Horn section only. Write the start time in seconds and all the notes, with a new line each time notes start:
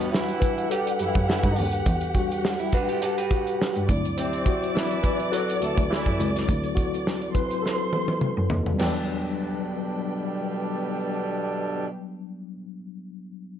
0.12 E3 E4
0.70 G3 G4
1.00 E3 E4
1.28 E3 E4
4.17 C3 C4
4.74 E3 E4
5.32 F#3 F#4
5.61 A3 A4
5.90 E3 E4
8.79 B2 D3 G3 D4